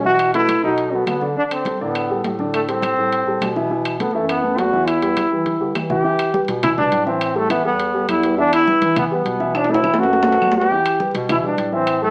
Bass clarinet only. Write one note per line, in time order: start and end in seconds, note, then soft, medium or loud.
0.00 0.58 B2 medium
0.62 1.04 B2 medium
1.07 1.49 D3 medium
1.80 2.21 A2 medium
2.24 2.92 A2 medium
2.97 3.24 A2 medium
3.26 3.40 A2 medium
3.41 4.09 B2 medium
4.14 4.55 F#2 medium
4.58 5.26 E2 medium
5.31 5.59 E3 medium
5.60 5.74 D3 medium
5.75 6.17 E3 medium
6.48 6.89 B2 loud
6.91 7.59 A2 medium
7.64 8.05 E2 medium
8.08 8.76 E2 medium
8.81 9.22 E3 loud
9.24 9.92 B2 medium
9.97 10.38 F#2 loud
10.41 10.83 E2 medium
11.14 11.55 B2 loud
11.58 12.10 A2 medium